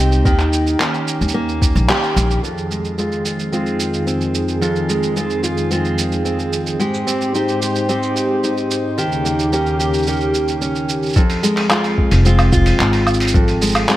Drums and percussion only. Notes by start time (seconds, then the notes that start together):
0.12 shaker
0.25 kick, shaker
0.39 clap, shaker
0.53 shaker
0.67 shaker
0.80 clap, shaker
0.94 shaker
1.08 shaker
1.21 shaker
1.28 shaker
1.49 shaker
1.62 kick, shaker
1.76 shaker
1.89 clap, shaker
2.03 shaker
2.17 shaker
2.31 shaker
2.44 shaker
2.58 shaker
2.71 shaker
2.85 shaker
2.98 shaker
3.12 shaker
3.25 shaker
3.39 shaker
3.53 shaker
3.66 shaker
3.80 shaker
3.94 shaker
4.07 shaker
4.21 shaker
4.35 shaker
4.48 shaker
4.62 shaker
4.76 shaker
4.89 shaker
5.03 shaker
5.17 shaker
5.30 shaker
5.44 shaker
5.57 shaker
5.71 shaker
5.85 shaker
5.98 shaker
6.12 shaker
6.25 shaker
6.39 shaker
6.53 shaker
6.66 shaker
6.80 shaker
6.94 shaker
7.08 shaker
7.21 shaker
7.35 shaker
7.48 shaker
7.62 shaker
7.76 shaker
7.89 shaker
8.03 shaker
8.16 shaker
8.44 shaker
8.57 shaker
8.71 shaker
8.98 shaker
9.12 shaker
9.26 shaker
9.39 shaker
9.53 shaker
9.66 shaker
9.80 shaker
9.94 shaker
9.98 shaker
10.03 shaker
10.07 shaker
10.12 shaker
10.16 shaker
10.21 shaker
10.34 shaker
10.48 shaker
10.62 shaker
10.75 shaker
10.89 shaker
11.03 shaker
11.06 shaker
11.09 shaker
11.13 kick, shaker
11.16 shaker
11.30 open hi-hat, shaker
11.44 shaker
11.57 clap, open hi-hat
11.70 clap, low woodblock, shaker
11.84 open hi-hat, shaker
11.98 kick
12.11 open hi-hat, shaker
12.25 shaker
12.39 open hi-hat, low woodblock, shaker
12.52 kick, shaker
12.66 open hi-hat, shaker
12.80 clap, shaker
12.93 open hi-hat, shaker
13.07 low woodblock, shaker
13.14 shaker
13.20 open hi-hat, shaker
13.23 open hi-hat
13.25 open hi-hat
13.27 open hi-hat, shaker
13.30 open hi-hat
13.32 kick, open hi-hat, shaker
13.48 open hi-hat, shaker
13.62 shaker
13.64 shaker
13.66 shaker
13.69 shaker
13.71 shaker
13.73 open hi-hat, low woodblock, shaker
13.75 shaker
13.89 clap, shaker